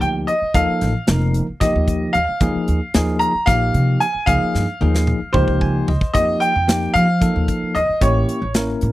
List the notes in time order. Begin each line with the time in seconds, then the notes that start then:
Already playing: F3 A#3 D#4 G4
0.01 D2 G5, closed hi-hat
0.27 D#5, closed hi-hat
0.42 muted upright bass stroke
0.54 D#2 F3 A#3 D#4 A4 F5, kick, closed hi-hat
0.69 muted upright bass stroke
0.81 A1, snare, closed hi-hat
1.07 F1 F3 A#3 D#4 A#4, snare, closed hi-hat
1.34 closed hi-hat
1.49 muted upright bass stroke
1.60 D#2 F3 A#3 D#4 G4 D#5, kick, snare, closed hi-hat
1.75 D#2
1.88 kick, closed hi-hat
2.13 D#2 F5, closed hi-hat
2.29 muted upright bass stroke
2.41 D#2 F3 A#3 D#4 G#4, kick, closed hi-hat
2.55 muted upright bass stroke
2.68 D#2, closed hi-hat
2.94 D#2 F3 A#3 D#4 G#4, snare, closed hi-hat
3.19 A#5, closed hi-hat
3.35 muted upright bass stroke
3.46 A#1 F3 A#3 D#4 G4 F5, kick, snare, closed hi-hat
3.74 C3, closed hi-hat
4.00 G#5, closed hi-hat
4.15 muted upright bass stroke
4.26 C#2 F3 A#3 D#4 G#4 F5, kick, closed hi-hat
4.42 muted upright bass stroke
4.55 G2, snare
4.81 D#2 F3 A#3 D#4 G#4, high tom
4.95 snare
5.07 mid tom
5.22 muted upright bass stroke
5.33 C#2 F3 A#3 D#4 G4 C5, kick, mid tom
5.48 C#2, kick
5.61 G#5, kick
5.88 C#2 D#5, floor tom
6.01 muted upright bass stroke, kick
6.13 F2 F3 A#3 D#4 G4 D#5, kick, closed hi-hat
6.40 G5, closed hi-hat
6.56 F2
6.67 F3 A#3 D#4 G4, snare, closed hi-hat
6.94 F3 F5, closed hi-hat
7.21 F3 A#3 D#4 A4, kick, closed hi-hat
7.36 D#2
7.48 kick, closed hi-hat
7.62 muted upright bass stroke
7.75 D#2 D#5, closed hi-hat
7.89 muted upright bass stroke
8.01 A1 A#3 C#4 E4 G4 C#5, kick, closed hi-hat
8.29 closed hi-hat
8.42 A1
8.54 A#3 C#4 E4 A#4, snare, closed hi-hat
8.81 A2, closed hi-hat